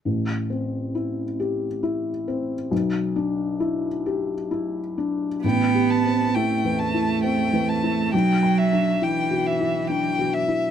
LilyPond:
<<
  \new Staff \with { instrumentName = "Violin" } { \time 3/4 \key a \dorian \tempo 4 = 67 r2. | r2. | g''8 a''8 g''8 a''8 g''8 a''8 | g''8 e''8 g''8 e''8 g''8 e''8 | }
  \new Staff \with { instrumentName = "Felt piano" } { \time 3/4 \key a \dorian a,,8 c'8 e'8 g'8 e'8 c'8 | b,,8 d'8 e'8 g'8 e'8 d'8 | \tuplet 3/2 { a,,8 g'8 c'8 e'8 e,8 e'8 c'8 e,8 e'8 } | \tuplet 3/2 { b,,8 g''8 d'8 e'8 b,8 e'8 d'8 b,8 e'8 } | }
  \new Staff \with { instrumentName = "Cello" } { \clef bass \time 3/4 \key a \dorian r2. | r2. | b4 a2 | fis4 e4. r8 | }
>>